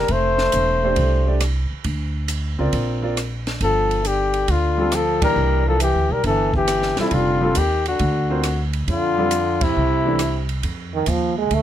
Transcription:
Already playing: G3 A#4
0.08 F1 A3 C5, kick, ride
0.38 snare
0.52 E1, hi-hat pedal, ride
0.83 A3 D4 G4 C5
0.96 C2, kick, ride
1.26 A3 D4 G4 D5
1.40 cross-stick, hi-hat pedal, ride
1.71 muted upright bass stroke
1.84 D2, kick, ride
2.28 hi-hat pedal, ride
2.59 C#2 C4 F4 A#4 D5
2.73 A#1, kick, ride
3.02 C4 F4 A#4 D5
3.17 cross-stick, hi-hat pedal, ride
3.47 snare, ride
3.61 G1 F3 A4, kick, ride
3.91 ride
4.05 D3 G4, hi-hat pedal, ride
4.34 ride
4.48 D2 D3 F4, kick, ride
4.78 G3 C4 F4 A4
4.92 F3 A4, cross-stick, hi-hat pedal, ride
5.22 E3 G3 A#3 D4 A#4, kick, ride
5.36 C2
5.67 F3 A4
5.80 E3 G4, hi-hat pedal, ride
5.94 D2
6.09 B1 G3 A#4
6.24 G1 E3 A4, kick, ride
6.54 E3 G4, kick
6.68 cross-stick, hi-hat pedal, ride
6.82 snare
6.97 C3 G3 C4 E4 F4 A4, muted upright bass stroke, snare, ride
7.11 F1 D3 F4, kick, ride
7.41 G3 C4 F4 A4
7.55 D#2 D#3 G4, hi-hat pedal, ride
7.86 D3 F#4, ride
7.99 D2, kick, ride
8.30 C4 F4 A#4 C5
8.43 cross-stick, hi-hat pedal, ride
8.73 ride
8.88 F2 D3 F4, kick, ride
9.18 G3 C4 F4 A4
9.31 hi-hat pedal, ride
9.61 C3 E4, kick, ride
9.76 C2
10.06 E3 A3 D4 E4
10.19 cross-stick, hi-hat pedal, ride
10.49 ride
10.63 F2, kick, ride
10.94 D#3
11.06 D#2 F3, kick, hi-hat pedal, ride
11.38 G#3
11.51 D2 A3, kick, ride

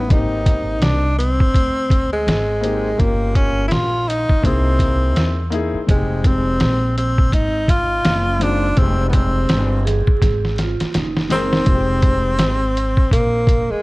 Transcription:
Already playing: B3
0.08 G#1 A#3 C4 D#4 G4, kick, closed hi-hat
0.12 D#4
0.46 kick, closed hi-hat
0.82 C2 D4, snare, closed hi-hat
1.19 C4, closed hi-hat
1.40 muted upright bass stroke, kick
1.54 D2, kick, closed hi-hat
1.90 kick, closed hi-hat
2.13 G#3
2.27 G#1, snare, closed hi-hat
2.61 A#3 C4 D#4 G4, closed hi-hat
2.98 G1 A#3 C#4 F4 G4, kick, closed hi-hat
3.35 C#4, kick, closed hi-hat
3.68 A#1 E4, snare, closed hi-hat
3.72 F4
4.09 D#4, closed hi-hat
4.29 muted upright bass stroke, kick
4.42 C2 A#3 C4 D#4 E4 G#4, kick, closed hi-hat
4.79 kick, closed hi-hat
5.16 E2, snare, closed hi-hat
5.50 A#3 D#4 E4 G#4, closed hi-hat
5.74 muted upright bass stroke
5.87 F1 G#3 C4 D#4 G4, kick, closed hi-hat
6.24 C4, kick, closed hi-hat
6.60 A#1, snare, closed hi-hat
6.98 C4, closed hi-hat
7.18 kick
7.32 G#1 D#4, kick, closed hi-hat
7.68 F4, kick, closed hi-hat
8.05 F#1, snare, closed hi-hat
8.39 G#3 C4 D4 D#4 F4, closed hi-hat
8.76 F1 G#3 C4 D#4 G4, kick, closed hi-hat
9.10 B3, kick, closed hi-hat
9.14 C4
9.49 G1, snare, closed hi-hat
9.85 G#4, snare, closed hi-hat
10.07 muted upright bass stroke, kick
10.22 G#1, kick, snare, closed hi-hat
10.45 snare
10.58 F4, snare, closed hi-hat
10.80 muted upright bass stroke, snare, closed hi-hat
10.93 F#1 D#4, snare, closed hi-hat
11.17 snare
11.30 G#3 C4 D#4 A#4, snare, closed hi-hat
11.53 snare
11.65 F1 G#3 C4 D#4 F4, kick, closed hi-hat
11.75 G4
12.02 kick, closed hi-hat
12.39 G#1, snare, closed hi-hat
12.77 closed hi-hat
12.97 muted upright bass stroke, kick
13.11 A#1 A#3, kick, closed hi-hat
13.47 kick, closed hi-hat
13.70 G#3, muted upright bass stroke

